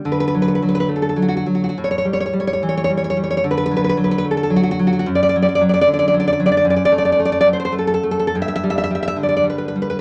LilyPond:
\new Staff \with { instrumentName = "Nylon-string guitar" } { \time 3/4 \key d \major \tempo 4 = 110 << { r32 b'32 b'32 b'32 r32 b'32 b'32 b'32 r32 b'32 b'32 b'32 r32 a'32 a'32 a'32 r32 fis'32 fis'32 fis'32 r32 fis'32 fis'32 fis'32 | r32 cis''32 cis''32 cis''32 r32 cis''32 cis''32 cis''32 r32 cis''32 cis''32 cis''32 r32 cis''32 cis''32 cis''32 r32 cis''32 cis''32 cis''32 r32 cis''32 cis''32 cis''32 | r32 b'32 b'32 b'32 r32 b'32 b'32 b'32 r32 b'32 b'32 b'32 r32 a'32 a'32 a'32 r32 fis'32 fis'32 fis'32 r32 fis'32 fis'32 fis'32 | r32 d''32 d''32 d''32 r32 d''32 d''32 d''32 r32 d''32 d''32 d''32 r32 d''32 d''32 d''32 r32 d''32 d''32 d''32 r32 d''32 d''32 d''32 |
r32 d''32 d''32 d''32 r32 d''32 d''32 d''32 r32 d''32 d''32 d''32 r32 c''32 c''32 c''32 r32 a'32 a'32 a'32 r32 a'32 a'32 a'32 | r32 e''32 e''32 e''32 r32 e''32 e''32 e''32 r32 e''32 e''32 e''32 r32 d''32 d''32 d''32 r32 b'32 b'32 b'32 r32 b'32 b'32 r32 | } \\ { d8 fis8 fis8 a8 fis8 fis8 | a,8 g8 g8 e8 g8 g8 | d8 fis8 fis8 a8 fis8 fis8 | fis,8 fis8 fis8 d8 fis8 fis8 |
fis,8 a8 a8 fis8 a8 a8 | g,8 g8 g8 d8 g8 g8 | } >> }